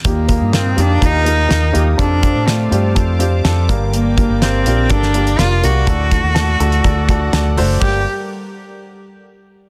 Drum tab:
CC |----------------|----------------|----------------|----------------|
HH |x-x-x-x-x-x-x-x-|x-x-x-x-x-x-x-x-|x-x-x-x-x-xxx-x-|x-x-x-xxx-x-x-o-|
SD |----o-------o---|----o-------o---|----o----o--o---|----o-------o---|
BD |o-o-----o-------|o-o-----o-----o-|--o-----o-------|o-o-----o-o-----|

CC |x---------------|
HH |----------------|
SD |----------------|
BD |o---------------|